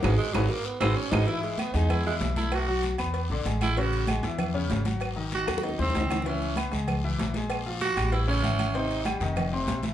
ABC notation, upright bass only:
X:1
M:4/4
L:1/8
Q:1/4=193
K:G#m
V:1 name="Upright bass" clef=bass
G,,, z G,,, z2 G,,, z G,,, | z3 E,,3 B,,,2- | B,,,3 E,,2 A,,, =A,,,2- | =A,,,3 E,,3 G,,,2- |
G,,,3 D,,2 D,, C,,2- | C,,3 C,,3 A,,,2- | A,,,3 =A,,,3 G,,,2- | G,,,3 ^E,,,3 A,,,2 |]